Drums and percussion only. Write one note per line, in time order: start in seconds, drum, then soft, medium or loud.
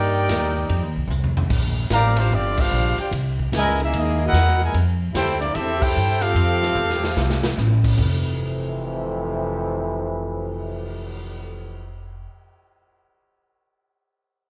0.29 snare medium
0.29 hi-hat pedal medium
0.29 ride medium
0.69 ride medium
1.10 floor tom medium
1.10 hi-hat pedal medium
1.24 floor tom medium
1.37 floor tom loud
1.50 kick medium
1.50 crash medium
1.90 snare medium
1.90 hi-hat pedal medium
1.90 ride loud
2.16 ride medium
2.57 kick loud
2.57 crash medium
2.72 hi-hat pedal medium
2.98 ride medium
3.12 ride medium
3.39 kick medium
3.53 snare medium
3.53 hi-hat pedal medium
3.53 ride medium
3.80 ride medium
3.93 ride medium
4.34 snare medium
4.34 hi-hat pedal medium
4.34 ride medium
4.74 ride medium
5.15 snare medium
5.15 hi-hat pedal medium
5.15 ride medium
5.42 ride medium
5.55 ride medium
5.82 kick medium
5.82 crash medium
5.96 hi-hat pedal medium
6.22 ride medium
6.36 ride medium
6.63 snare medium
6.76 hi-hat pedal medium
6.90 snare medium
7.04 snare medium
7.17 snare medium
7.30 snare medium
7.43 snare loud
7.58 snare medium
7.58 hi-hat pedal medium
7.84 kick medium
7.84 crash medium
7.98 kick medium
7.98 crash medium
8.24 cymbal swell medium